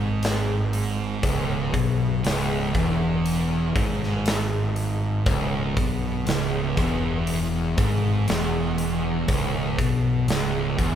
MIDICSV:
0, 0, Header, 1, 4, 480
1, 0, Start_track
1, 0, Key_signature, 4, "minor"
1, 0, Tempo, 1005025
1, 593, Time_signature, 4, 2, 24, 8
1, 5230, End_track
2, 0, Start_track
2, 0, Title_t, "Distorted electric guitar"
2, 0, Program_c, 0, 30
2, 0, Note_on_c, 0, 44, 87
2, 582, Note_off_c, 0, 44, 0
2, 585, Note_on_c, 0, 37, 107
2, 822, Note_off_c, 0, 37, 0
2, 828, Note_on_c, 0, 47, 102
2, 1064, Note_off_c, 0, 47, 0
2, 1067, Note_on_c, 0, 37, 85
2, 1303, Note_off_c, 0, 37, 0
2, 1309, Note_on_c, 0, 40, 104
2, 1785, Note_off_c, 0, 40, 0
2, 1788, Note_on_c, 0, 44, 96
2, 2505, Note_off_c, 0, 44, 0
2, 2512, Note_on_c, 0, 37, 120
2, 2747, Note_off_c, 0, 37, 0
2, 2750, Note_on_c, 0, 47, 110
2, 2986, Note_off_c, 0, 47, 0
2, 2990, Note_on_c, 0, 37, 89
2, 3225, Note_off_c, 0, 37, 0
2, 3231, Note_on_c, 0, 40, 89
2, 3706, Note_off_c, 0, 40, 0
2, 3714, Note_on_c, 0, 44, 95
2, 3947, Note_off_c, 0, 44, 0
2, 3951, Note_on_c, 0, 40, 103
2, 4425, Note_off_c, 0, 40, 0
2, 4430, Note_on_c, 0, 37, 103
2, 4664, Note_off_c, 0, 37, 0
2, 4671, Note_on_c, 0, 47, 92
2, 4904, Note_off_c, 0, 47, 0
2, 4911, Note_on_c, 0, 37, 93
2, 5144, Note_off_c, 0, 37, 0
2, 5148, Note_on_c, 0, 40, 104
2, 5230, Note_off_c, 0, 40, 0
2, 5230, End_track
3, 0, Start_track
3, 0, Title_t, "Fingered electric bass"
3, 0, Program_c, 1, 33
3, 0, Note_on_c, 1, 32, 102
3, 572, Note_off_c, 1, 32, 0
3, 589, Note_on_c, 1, 25, 86
3, 814, Note_off_c, 1, 25, 0
3, 830, Note_on_c, 1, 35, 107
3, 1055, Note_off_c, 1, 35, 0
3, 1075, Note_on_c, 1, 25, 98
3, 1298, Note_off_c, 1, 25, 0
3, 1314, Note_on_c, 1, 28, 96
3, 1776, Note_off_c, 1, 28, 0
3, 1794, Note_on_c, 1, 32, 99
3, 2496, Note_off_c, 1, 32, 0
3, 2516, Note_on_c, 1, 25, 89
3, 2739, Note_off_c, 1, 25, 0
3, 2755, Note_on_c, 1, 35, 107
3, 2978, Note_off_c, 1, 35, 0
3, 2993, Note_on_c, 1, 25, 104
3, 3218, Note_off_c, 1, 25, 0
3, 3234, Note_on_c, 1, 28, 89
3, 3696, Note_off_c, 1, 28, 0
3, 3717, Note_on_c, 1, 32, 107
3, 3939, Note_off_c, 1, 32, 0
3, 3959, Note_on_c, 1, 28, 100
3, 4417, Note_off_c, 1, 28, 0
3, 4435, Note_on_c, 1, 25, 89
3, 4657, Note_off_c, 1, 25, 0
3, 4674, Note_on_c, 1, 35, 90
3, 4896, Note_off_c, 1, 35, 0
3, 4909, Note_on_c, 1, 25, 103
3, 5133, Note_off_c, 1, 25, 0
3, 5152, Note_on_c, 1, 28, 86
3, 5230, Note_off_c, 1, 28, 0
3, 5230, End_track
4, 0, Start_track
4, 0, Title_t, "Drums"
4, 109, Note_on_c, 9, 46, 81
4, 119, Note_on_c, 9, 38, 116
4, 156, Note_off_c, 9, 46, 0
4, 166, Note_off_c, 9, 38, 0
4, 350, Note_on_c, 9, 46, 58
4, 398, Note_off_c, 9, 46, 0
4, 588, Note_on_c, 9, 46, 85
4, 589, Note_on_c, 9, 36, 113
4, 636, Note_off_c, 9, 46, 0
4, 637, Note_off_c, 9, 36, 0
4, 830, Note_on_c, 9, 36, 98
4, 831, Note_on_c, 9, 46, 57
4, 878, Note_off_c, 9, 36, 0
4, 879, Note_off_c, 9, 46, 0
4, 1072, Note_on_c, 9, 46, 81
4, 1082, Note_on_c, 9, 38, 105
4, 1120, Note_off_c, 9, 46, 0
4, 1130, Note_off_c, 9, 38, 0
4, 1312, Note_on_c, 9, 36, 107
4, 1315, Note_on_c, 9, 46, 51
4, 1360, Note_off_c, 9, 36, 0
4, 1362, Note_off_c, 9, 46, 0
4, 1555, Note_on_c, 9, 46, 73
4, 1603, Note_off_c, 9, 46, 0
4, 1794, Note_on_c, 9, 36, 114
4, 1797, Note_on_c, 9, 46, 61
4, 1842, Note_off_c, 9, 36, 0
4, 1845, Note_off_c, 9, 46, 0
4, 1926, Note_on_c, 9, 38, 37
4, 1974, Note_off_c, 9, 38, 0
4, 2033, Note_on_c, 9, 46, 86
4, 2043, Note_on_c, 9, 38, 124
4, 2081, Note_off_c, 9, 46, 0
4, 2091, Note_off_c, 9, 38, 0
4, 2274, Note_on_c, 9, 46, 52
4, 2322, Note_off_c, 9, 46, 0
4, 2513, Note_on_c, 9, 46, 71
4, 2514, Note_on_c, 9, 36, 120
4, 2560, Note_off_c, 9, 46, 0
4, 2562, Note_off_c, 9, 36, 0
4, 2755, Note_on_c, 9, 36, 102
4, 2755, Note_on_c, 9, 46, 58
4, 2802, Note_off_c, 9, 46, 0
4, 2803, Note_off_c, 9, 36, 0
4, 2993, Note_on_c, 9, 46, 75
4, 3003, Note_on_c, 9, 38, 117
4, 3041, Note_off_c, 9, 46, 0
4, 3051, Note_off_c, 9, 38, 0
4, 3235, Note_on_c, 9, 36, 102
4, 3235, Note_on_c, 9, 46, 52
4, 3282, Note_off_c, 9, 46, 0
4, 3283, Note_off_c, 9, 36, 0
4, 3473, Note_on_c, 9, 46, 79
4, 3521, Note_off_c, 9, 46, 0
4, 3714, Note_on_c, 9, 46, 69
4, 3715, Note_on_c, 9, 36, 116
4, 3762, Note_off_c, 9, 46, 0
4, 3763, Note_off_c, 9, 36, 0
4, 3954, Note_on_c, 9, 46, 83
4, 3964, Note_on_c, 9, 38, 122
4, 4001, Note_off_c, 9, 46, 0
4, 4011, Note_off_c, 9, 38, 0
4, 4194, Note_on_c, 9, 46, 59
4, 4242, Note_off_c, 9, 46, 0
4, 4434, Note_on_c, 9, 46, 87
4, 4435, Note_on_c, 9, 36, 116
4, 4481, Note_off_c, 9, 46, 0
4, 4482, Note_off_c, 9, 36, 0
4, 4673, Note_on_c, 9, 36, 101
4, 4676, Note_on_c, 9, 46, 54
4, 4721, Note_off_c, 9, 36, 0
4, 4724, Note_off_c, 9, 46, 0
4, 4911, Note_on_c, 9, 46, 85
4, 4921, Note_on_c, 9, 38, 111
4, 4959, Note_off_c, 9, 46, 0
4, 4969, Note_off_c, 9, 38, 0
4, 5151, Note_on_c, 9, 36, 92
4, 5153, Note_on_c, 9, 46, 57
4, 5199, Note_off_c, 9, 36, 0
4, 5201, Note_off_c, 9, 46, 0
4, 5230, End_track
0, 0, End_of_file